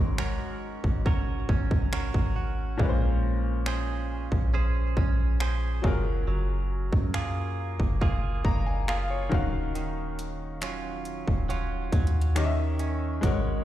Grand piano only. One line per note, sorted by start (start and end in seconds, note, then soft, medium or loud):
0.00 2.75 G#2 medium
0.00 2.75 F#3 medium
0.00 2.76 C#4 medium
0.00 2.77 A#4 medium
2.77 5.79 A#2 medium
2.77 5.80 G#3 medium
2.77 5.81 C#4 medium
2.82 2.88 B4 medium
2.89 5.85 C5 medium
5.82 9.27 F#3 medium
5.82 9.27 F4 medium
5.82 9.28 G#4 medium
5.87 9.29 A#4 medium
8.45 8.65 A#5 medium
8.66 8.87 G#5 medium
8.88 9.09 F5 medium
9.10 9.71 C#5 medium
9.29 12.31 D#3 medium
9.29 12.32 C#4 medium
9.29 12.33 F#4 medium
9.34 12.33 F5 medium
12.35 13.23 D#3 medium
12.35 13.23 C#4 medium
12.35 13.23 G4 medium
12.35 12.43 D#5 medium
12.44 13.27 E5 medium
13.21 13.64 G#3 medium
13.21 13.64 F#4 medium
13.21 13.64 A#4 medium
13.26 13.64 C#5 medium